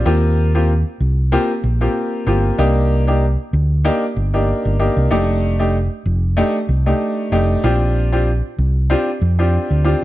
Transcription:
0.06 fingered electric bass D#2, grand piano A#3 C4 F4 G4
0.55 grand piano A#3 C4 F4 G4
1.00 fingered electric bass C2
1.32 grand piano A#3 C4 F4 G4
1.64 fingered electric bass A#1
1.81 grand piano A#3 C4 F4 G4
2.27 fingered electric bass G1, grand piano A#3 C4 F4 G4
2.58 fingered electric bass C2, grand piano A#3 D4 D#4 G4
3.07 grand piano A#3 D4 D#4 G4
3.53 fingered electric bass D2
3.85 grand piano A#3 D4 D#4 G4
4.16 fingered electric bass G1
4.34 grand piano A#3 D4 D#4 G4
4.65 fingered electric bass G1
4.79 grand piano A#3 D4 D#4 G4
4.97 fingered electric bass C2
5.11 fingered electric bass F1, grand piano A3 D4 D#4 G4
5.59 grand piano A3 D4 D#4 G4
6.06 fingered electric bass F1
6.37 grand piano A3 D4 D#4 G4
6.69 fingered electric bass C2
6.86 grand piano A3 D4 D#4 G4
7.32 fingered electric bass F1, grand piano A3 D4 D#4 G4
7.64 fingered electric bass A#1, grand piano C4 D4 F4 G4
8.12 grand piano C4 D4 F4 G4
8.59 fingered electric bass C2
8.90 grand piano C4 D4 F4 G4
9.22 fingered electric bass F2
9.39 grand piano C4 D4 F4 G4
9.71 fingered electric bass D2
9.84 grand piano C4 D4 F4 G4

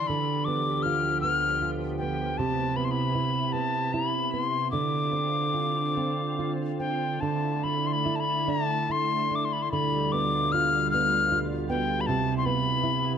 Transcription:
Already playing: nylon-string guitar A3 D4 E4
0.07 ambient pad D2 F3 B3 G4, nylon-string guitar D3, tin whistle B5
0.45 nylon-string guitar B3, tin whistle D6
0.83 nylon-string guitar F4, tin whistle F6
1.21 nylon-string guitar B3, tin whistle F6
1.62 nylon-string guitar F4
1.98 nylon-string guitar B3, tin whistle G5
2.38 ambient pad C3 E4, nylon-string guitar C3, tin whistle A5
2.76 nylon-string guitar B3, tin whistle B5
2.85 tin whistle C6
2.91 tin whistle B5
3.15 nylon-string guitar E4
3.52 nylon-string guitar B3, tin whistle A5
3.93 nylon-string guitar E4, tin whistle B5
4.31 nylon-string guitar B3, tin whistle B5
4.42 tin whistle C6
4.71 ambient pad D3 C4 F4, nylon-string guitar D3, tin whistle D6
5.12 nylon-string guitar C4
5.54 nylon-string guitar F4
5.97 nylon-string guitar C4
6.39 nylon-string guitar F4
6.79 nylon-string guitar C4, tin whistle G5
7.21 nylon-string guitar D3, ambient pad D3 A3 E4, tin whistle A5
7.63 nylon-string guitar D4, tin whistle B5
7.87 tin whistle C6
7.93 tin whistle B5
8.06 nylon-string guitar E4
8.16 tin whistle A5
8.20 tin whistle B5
8.48 nylon-string guitar D4, tin whistle A5
8.89 nylon-string guitar E4, tin whistle C6
9.31 nylon-string guitar D4
9.35 tin whistle D6
9.45 tin whistle C6
9.53 tin whistle B5
9.62 tin whistle C6
9.71 ambient pad D2 B2 G3 F4, nylon-string guitar D3, tin whistle B5
10.12 nylon-string guitar B3, tin whistle D6
10.52 nylon-string guitar F4, tin whistle F6
10.91 nylon-string guitar B3, tin whistle F6
11.32 nylon-string guitar F4
11.69 nylon-string guitar B3, tin whistle G5
12.01 tin whistle B5
12.06 nylon-string guitar C3, ambient pad C3 B3 E4, tin whistle A5
12.37 tin whistle C6
12.45 nylon-string guitar B3, tin whistle B5
12.84 nylon-string guitar E4

